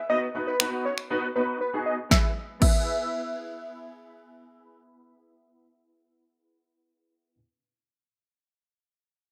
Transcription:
Already playing: E5
0.09 B3 D#4 F#4 B4 D#5
0.35 B3 D#4 F#4 B4
0.47 B4
0.60 B3 D#4 F#4 B4, finger snap
0.85 C#5
0.98 finger snap
1.10 B3 D#4 F#4 B4
1.35 B3 D#4 F#4 B4
1.61 B4
1.73 B3 D#4 F#4 G#4
1.86 D#5
2.09 B3 E4 G#4 E5, kick, snare
2.13 B4
2.60 B3 E4 G#4 B4 E5, kick, crash

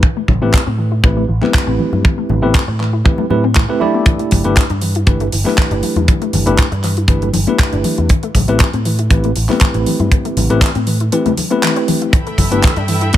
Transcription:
0.03 E3, kick
0.17 A3
0.28 A1 E3, kick, high conga, low conga
0.42 A1 A3 B3 C4 E4 G4 B4
0.53 E3, kick, clap
0.67 A2 C4
0.78 E3
0.92 E4
1.03 A1 E3 A3 C4 E4 G4 B4, kick
1.17 A3
1.28 A1 E3
1.41 A3 B3 C4 E4 G4 B4, clap, high conga
1.54 E3, kick, clap
1.67 A1 C4
1.79 E3, high conga
1.93 G2 E4, high conga
2.04 E3, kick
2.18 A3
2.29 A1 E3, high conga, low conga
2.42 A1 A3 B3 C4 E4 G4 B4
2.54 E3, kick, clap
2.68 A2 C4
2.80 E3, clap
2.93 E4
3.05 E3 A3 C4 E4 G4 B4, kick
3.18 A3, high conga
3.30 A2 A3 C4 E4 G4 B4, high conga
3.44 C4
3.56 E3, kick, clap
3.68 A3 C4 E4 G4 B4
3.80 A3 D4 E4 G4 D5, high conga
3.94 B3
4.06 E3, kick, closed hi-hat
4.19 A3, closed hi-hat
4.31 G1 E3, kick, open hi-hat, high conga, low conga
4.44 G1 A3 B3 D4 E4 G4 B4, closed hi-hat
4.57 E3, kick, clap, closed hi-hat
4.70 G2 D4, closed hi-hat
4.81 E3, open hi-hat
4.95 E4, closed hi-hat
5.06 G1 E3 A3 D4 E4 G4 B4, kick, closed hi-hat
5.20 A3, closed hi-hat
5.32 G1 E3, open hi-hat
5.44 A3 B3 D4 E4 G4 B4, clap, high conga
5.58 E3, kick, clap, closed hi-hat
5.71 G1 D4, closed hi-hat
5.83 E3, open hi-hat, high conga
5.96 E2 E4, closed hi-hat, high conga
6.08 E3, kick, closed hi-hat
6.22 A3, closed hi-hat
6.33 G1 E3, open hi-hat, high conga, low conga
6.46 G1 A3 B3 D4 E4 G4 B4, closed hi-hat
6.58 E3, kick, clap, closed hi-hat
6.72 G2 D4, closed hi-hat
6.84 E3, clap, open hi-hat
6.97 E4, closed hi-hat
7.08 G1 E3 A3 D4 E4 G4 B4, kick, closed hi-hat
7.22 A3, closed hi-hat, high conga
7.33 G1 E3, open hi-hat, high conga
7.47 A3 B3 D4 E4 G4 B4, closed hi-hat
7.59 E3, kick, clap, closed hi-hat
7.73 G1 D4, closed hi-hat
7.84 E3, open hi-hat, high conga
7.98 E2 E4, closed hi-hat
8.09 E3, kick, closed hi-hat
8.23 A3, closed hi-hat
8.35 A1 E3, kick, open hi-hat, high conga, low conga
8.48 A1 A3 B3 C4 E4 G4 B4, closed hi-hat
8.60 E3, kick, clap, closed hi-hat
8.74 A2 C4, closed hi-hat
8.85 E3, open hi-hat
8.99 E4, closed hi-hat
9.10 A1 E3 A3 C4 E4 G4 B4, kick, closed hi-hat
9.24 A3, closed hi-hat
9.36 A1 E3, open hi-hat
9.49 A3 B3 C4 E4 G4 B4, clap, high conga
9.61 E3, kick, clap, closed hi-hat
9.74 A1 C4, closed hi-hat
9.86 E3, open hi-hat, high conga
9.99 G2 E4, closed hi-hat, high conga
10.12 E3, kick, closed hi-hat
10.25 A3, closed hi-hat
10.37 A1 E3, open hi-hat, high conga, low conga
10.50 A1 A3 B3 C4 E4 G4 B4, closed hi-hat
10.61 E3, kick, clap, closed hi-hat
10.75 A2 C4, closed hi-hat
10.87 E3, open hi-hat
11.00 E4, closed hi-hat
11.12 E3 A3 C4 E4 G4 B4, closed hi-hat
11.26 A3, closed hi-hat, high conga, low conga
11.37 E3, open hi-hat, high conga
11.50 A3 B3 C4 E4 G4 B4, closed hi-hat
11.63 E3, clap, closed hi-hat
11.76 C4, closed hi-hat
11.88 E3, open hi-hat, high conga
12.02 E4, closed hi-hat
12.13 E3 A4 E5 G5 B5, kick, closed hi-hat
12.27 A3, closed hi-hat
12.38 G1 E3, kick, open hi-hat, high conga, low conga
12.51 G1 A3 B3 D4 E4 G4 B4, closed hi-hat
12.63 E3, kick, clap, closed hi-hat
12.76 G2 D4, closed hi-hat
12.88 E3, open hi-hat
13.01 E4, closed hi-hat
13.13 G1 E3 A3 D4 E4 G4 B4, kick, closed hi-hat

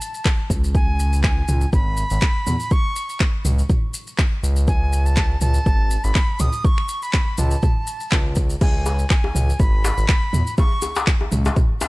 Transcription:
Already playing: A5
0.01 maracas
0.14 maracas
0.25 finger snap, kick, clap, maracas
0.50 C#2, kick, maracas
0.64 maracas
0.75 G#5, kick, maracas
0.99 maracas
1.13 maracas
1.24 G#5, finger snap, kick, clap, maracas
1.48 C#2, mid tom, maracas
1.61 maracas
1.73 G#1 B5, kick, maracas
1.97 maracas
2.10 G#1, maracas
2.21 finger snap, kick, clap, maracas
2.47 E2, mid tom, maracas
2.60 maracas
2.71 C#6, kick, maracas
2.96 maracas
3.10 maracas
3.20 finger snap, kick, clap, maracas
3.45 C#2, mid tom, maracas
3.59 maracas
3.70 kick, mid tom, maracas
3.94 maracas
4.07 maracas
4.19 finger snap, kick, clap, maracas
4.43 C#2, maracas
4.56 maracas
4.68 G#5, kick, maracas
4.93 maracas
5.06 A5, maracas
5.16 finger snap, kick, clap, maracas
5.41 C#2 A5, mid tom, maracas
5.54 maracas
5.66 G#1, kick, maracas
5.91 maracas
6.04 G#1 B5, maracas
6.15 finger snap, kick, clap, maracas
6.39 C#2 D#6, mid tom, maracas
6.53 maracas
6.65 C#6, kick, maracas
6.78 finger snap
6.89 maracas
7.02 B5, maracas
7.13 finger snap, kick, clap, maracas
7.38 C#2 A5, mid tom, maracas
7.51 maracas
7.62 kick, mid tom, maracas
7.87 maracas
8.00 maracas
8.12 C#2, finger snap, kick, clap, maracas
8.35 kick, maracas
8.50 maracas
8.61 C#2 G#5, kick, crash, djembe tone, maracas
8.86 djembe tone, maracas
8.99 maracas
9.10 G#5, finger snap, kick, clap, maracas
9.24 djembe tone
9.35 C#2, mid tom, maracas
9.50 maracas
9.59 G#1 B5, kick, maracas
9.84 djembe slap, maracas
9.98 G#1, maracas
10.09 finger snap, kick, clap, maracas
10.33 E2, mid tom, maracas
10.47 maracas
10.58 C#6, kick, djembe tone, maracas
10.82 djembe tone, maracas
10.96 djembe slap, maracas
11.07 finger snap, kick, clap, maracas
11.21 djembe tone
11.32 C#2, mid tom, maracas
11.45 djembe slap, maracas
11.56 kick, mid tom, maracas
11.81 djembe slap, djembe tone, maracas

